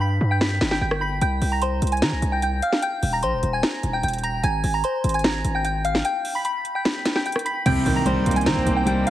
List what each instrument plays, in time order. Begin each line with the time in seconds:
Already playing: 808-style bass G2
0.01 synth bell B5 B6
0.21 808-style bass G2
0.31 synth bell G5 G6
0.41 synth bell B5 B6, snare
0.61 808-style bass G1, snare
0.71 synth bell G5 G6, snare
0.81 808-style bass G1, synth bell G5 G6
0.91 cross-stick
1.01 synth bell B5 B6
1.21 808-style bass C2, synth bell G5 G6, closed hi-hat
1.42 808-style bass C2, open hi-hat
1.52 synth bell A#5 A#6
1.62 synth bell C5 C6, closed hi-hat
1.82 808-style bass C2, closed hi-hat
1.87 closed hi-hat
1.92 synth bell G#5 G#6, closed hi-hat
1.97 closed hi-hat
2.02 808-style bass D#3, synth bell A#5 A#6, snare
2.12 808-style bass C2
2.22 808-style bass C2, closed hi-hat
2.32 synth bell G5 G6
2.42 synth bell G5 G6, closed hi-hat
2.62 synth bell F5 F6, closed hi-hat
2.73 snare
2.83 synth bell G5 G6, closed hi-hat
3.03 808-style bass D#1, open hi-hat
3.13 synth bell A#5 A#6
3.23 808-style bass A#1, synth bell C5 C6, closed hi-hat
3.33 808-style bass D#1
3.43 808-style bass D#1, closed hi-hat
3.53 synth bell G#5 G#6
3.63 synth bell A#5 A#6, snare, closed hi-hat
3.83 808-style bass D#1, closed hi-hat
3.93 synth bell G5 G6
4.03 808-style bass D#1, synth bell G5 G6, closed hi-hat
4.08 closed hi-hat
4.13 closed hi-hat
4.18 closed hi-hat
4.23 synth bell A#5 A#6, closed hi-hat
4.43 808-style bass G#1, synth bell G#5 G#6, closed hi-hat
4.64 808-style bass G#1, open hi-hat
4.74 synth bell A#5 A#6
4.84 synth bell C5 C6, closed hi-hat
5.04 808-style bass G#1, closed hi-hat
5.09 closed hi-hat
5.14 synth bell G#5 G#6, closed hi-hat
5.19 closed hi-hat
5.24 synth bell A#5 A#6, snare, closed hi-hat
5.44 808-style bass G#1, closed hi-hat
5.55 synth bell G5 G6
5.64 synth bell G5 G6, closed hi-hat
5.85 synth bell F5 F6, closed hi-hat
5.95 snare
6.05 synth bell G5 G6, closed hi-hat
6.25 open hi-hat
6.35 synth bell B5 B6
6.45 synth bell B5 B6, closed hi-hat
6.65 closed hi-hat
6.75 synth bell G5 G6
6.85 synth bell B5 B6, snare, closed hi-hat
7.05 snare, closed hi-hat
7.15 synth bell G5 G6, snare
7.26 synth bell G5 G6, closed hi-hat
7.32 cross-stick, closed hi-hat
7.39 closed hi-hat
7.45 synth bell B5 B6, closed hi-hat
7.66 808-style bass C2, grand piano C3, analog synth pad D#4 C5 G5 A#5, synth bell G5 G6, closed hi-hat, crash, impact
7.86 808-style bass C2, grand piano D#3, open hi-hat
7.96 synth bell A#5 A#6
8.06 grand piano G3, synth bell C5 C6, closed hi-hat
8.26 808-style bass C2, grand piano A#3, closed hi-hat
8.31 closed hi-hat
8.36 synth bell G#5 G#6, closed hi-hat
8.41 closed hi-hat
8.46 808-style bass D#3, grand piano C4, synth bell A#5 A#6, snare, closed hi-hat
8.56 808-style bass C2
8.66 808-style bass C2, grand piano A#3, closed hi-hat
8.76 synth bell G5 G6
8.86 grand piano G3, synth bell G5 G6, closed hi-hat
9.07 grand piano D#3, synth bell F5, closed hi-hat